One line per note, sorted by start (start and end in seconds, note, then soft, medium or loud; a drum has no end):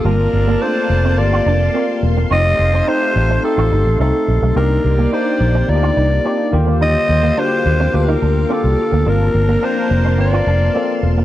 0.00 4.52 F5 medium
0.04 0.26 G1 loud
0.04 0.17 G3 medium
0.04 0.46 A#3 medium
0.04 1.99 A#3 medium
0.04 2.29 A#3 medium
0.04 0.46 C4 medium
0.04 0.46 F4 medium
0.04 0.63 A#4 loud
0.04 1.99 D5 loud
0.04 2.29 A5 medium
0.04 1.99 A5 medium
0.04 0.46 A5 medium
0.04 6.49 C6 medium
0.33 0.55 G1 loud
0.33 muted clean electric guitar stroke soft
0.48 0.59 A#3 medium
0.61 0.68 A3 medium
0.61 1.02 C4 medium
0.61 0.73 D4 medium
0.61 1.03 F4 medium
0.61 1.03 A4 medium
0.61 1.20 C5 loud
0.67 1.05 A#3 medium
0.90 1.18 F1 medium
0.90 muted clean electric guitar stroke soft
1.04 1.15 C4 medium
1.17 1.39 G1 medium
1.17 1.59 A#3 medium
1.17 1.59 C4 medium
1.17 1.59 F4 medium
1.17 1.59 G4 medium
1.17 2.04 D5 medium
1.17 muted clean electric guitar stroke soft
1.33 1.44 F4 medium
1.46 1.67 F1 medium
1.46 1.58 D4 medium
1.74 2.15 A#3 medium
1.74 1.86 C4 medium
1.74 2.15 C4 medium
1.74 2.15 F4 medium
1.74 2.16 A#4 medium
2.03 2.24 E1 medium
2.03 muted clean electric guitar stroke soft
2.17 2.28 A#3 medium
2.30 2.52 F1 loud
2.30 2.71 A3 medium
2.30 4.24 A3 medium
2.30 2.72 C4 medium
2.30 2.72 D#4 medium
2.30 2.42 F4 medium
2.30 4.24 F4 medium
2.30 2.72 G4 medium
2.30 4.54 A4 medium
2.30 4.24 C5 medium
2.30 2.90 D#5 loud
2.59 2.80 F1 loud
2.59 muted clean electric guitar stroke soft
2.73 2.84 C4 medium
2.87 3.28 A3 medium
2.87 3.28 C4 medium
2.87 3.28 D#4 medium
2.87 2.99 D#4 medium
2.87 3.28 G4 medium
2.87 3.44 C5 loud
3.16 3.37 A1 medium
3.16 muted clean electric guitar stroke soft
3.30 3.41 C4 medium
3.43 3.84 A3 medium
3.43 3.84 C4 medium
3.43 3.84 D#4 medium
3.43 3.85 G4 medium
3.43 3.96 A4 medium
3.43 muted clean electric guitar stroke soft
3.58 3.68 A1 medium
3.58 3.69 F4 medium
3.72 3.82 G1 medium
3.72 3.83 D#4 medium
3.86 3.96 A1 medium
3.99 4.10 C2 medium
3.99 4.40 A3 medium
3.99 4.40 C4 medium
3.99 4.11 C4 medium
3.99 4.41 D#4 medium
3.99 4.41 A4 medium
3.99 4.53 A4 medium
4.28 4.39 A#1 medium
4.28 muted clean electric guitar stroke soft
4.42 4.53 B1 medium
4.42 4.54 A3 medium
4.56 4.77 C2 loud
4.56 4.97 A#3 medium
4.56 6.22 A#3 medium
4.56 4.68 C4 medium
4.56 4.97 D4 medium
4.56 4.97 D#4 medium
4.56 6.22 G4 medium
4.56 4.97 G4 medium
4.56 5.09 A#4 loud
4.56 6.52 A#4 medium
4.56 6.22 D5 medium
4.56 6.52 D5 medium
4.84 5.06 C2 loud
4.84 muted clean electric guitar stroke soft
4.99 5.10 A#3 medium
5.12 5.53 A#3 medium
5.12 5.53 D4 medium
5.12 5.24 D#4 medium
5.12 5.53 D#4 medium
5.12 5.54 G4 medium
5.12 5.71 C5 medium
5.40 5.62 A#1 loud
5.40 muted clean electric guitar stroke soft
5.55 5.66 C4 medium
5.68 5.90 D2 medium
5.68 6.09 A#3 medium
5.68 6.09 D4 medium
5.68 6.10 D#4 medium
5.68 5.76 F4 medium
5.68 6.55 D5 medium
5.68 muted clean electric guitar stroke soft
5.76 6.13 G4 medium
5.83 5.94 F4 medium
5.97 6.18 C2 medium
5.97 6.08 D#4 medium
6.24 6.51 A#3 medium
6.24 6.36 C4 medium
6.24 6.53 D4 medium
6.24 6.53 D#4 medium
6.24 6.53 G4 medium
6.53 6.95 D#2 loud
6.53 7.21 D3 medium
6.53 8.74 G3 medium
6.53 7.20 A#3 medium
6.53 8.74 F4 medium
6.53 7.21 F4 medium
6.53 7.21 G4 loud
6.53 9.04 G4 medium
6.53 8.74 C5 loud
6.53 9.04 F5 medium
6.53 9.04 D6 medium
6.53 muted clean electric guitar stroke soft
6.67 6.78 A#3 medium
6.81 6.92 D#4 medium
6.81 7.40 D#5 loud
7.09 7.30 D#2 loud
7.09 muted clean electric guitar stroke soft
7.23 7.34 A#3 medium
7.37 7.78 A#3 medium
7.37 7.78 D4 medium
7.37 7.49 D4 medium
7.37 7.78 F4 medium
7.37 7.44 F#4 medium
7.37 7.97 C5 loud
7.45 7.82 G4 medium
7.66 7.87 D#2 medium
7.66 muted clean electric guitar stroke soft
7.80 7.91 C4 medium
7.93 8.15 D2 medium
7.93 8.34 A#3 medium
7.93 8.34 D4 medium
7.93 8.34 F4 medium
7.93 8.35 G4 medium
7.93 8.54 A#4 medium
7.93 muted clean electric guitar stroke soft
8.08 8.19 D#4 medium
8.22 8.43 D2 medium
8.22 8.33 D4 medium
8.49 8.90 A#3 medium
8.49 8.61 C4 medium
8.49 8.91 D4 medium
8.49 8.91 F4 medium
8.49 8.91 G4 medium
8.49 9.10 A4 medium
8.64 8.75 C2 medium
8.78 muted clean electric guitar stroke soft
8.92 9.03 D2 loud
8.92 9.03 A#3 medium
9.06 9.28 G1 loud
9.06 10.99 F3 medium
9.06 9.18 G3 medium
9.06 9.47 A#3 medium
9.06 11.25 A#3 medium
9.06 9.47 C4 medium
9.06 10.99 D4 medium
9.06 9.47 F4 medium
9.06 10.99 A#4 loud
9.06 9.66 A#4 loud
9.06 11.25 F5 medium
9.06 11.25 A5 medium
9.06 9.47 A5 medium
9.06 11.25 C6 medium
9.34 9.56 G1 loud
9.34 muted clean electric guitar stroke soft
9.49 9.60 A#3 medium
9.62 10.03 A#3 medium
9.62 10.03 C4 medium
9.62 9.74 D4 medium
9.62 10.03 F4 medium
9.62 10.20 C5 medium
9.62 10.04 A5 medium
9.91 10.19 F1 loud
9.91 muted clean electric guitar stroke soft
10.05 10.16 C4 medium
10.18 10.40 G1 medium
10.18 10.59 A#3 medium
10.18 10.59 C4 medium
10.18 10.59 F4 medium
10.18 10.26 B4 medium
10.18 11.01 D5 medium
10.18 muted clean electric guitar stroke soft
10.26 10.63 C5 medium
10.33 10.44 F4 medium
10.47 10.68 F1 loud
10.47 10.58 D4 medium
10.74 11.15 A#3 medium
10.74 11.16 C4 medium
10.74 10.86 C4 medium
10.74 11.16 F4 medium
10.74 11.16 A4 medium
11.03 11.24 E1 medium
11.03 muted clean electric guitar stroke soft
11.17 11.25 A#3 medium